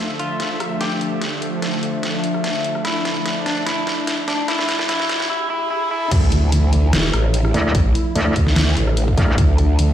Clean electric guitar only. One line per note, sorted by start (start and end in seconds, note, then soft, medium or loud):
0.00 0.12 F4 medium
0.20 0.73 F4 medium
0.81 2.77 G4 medium
2.85 3.38 E4 medium
3.46 3.65 D4 medium
3.66 4.20 E4 medium
4.28 4.47 D4 medium
4.48 4.87 E4 loud
4.89 5.28 E4 loud
5.30 5.49 E4 loud
5.50 5.69 E4 loud
5.71 5.89 E4 loud
5.91 6.10 E4 loud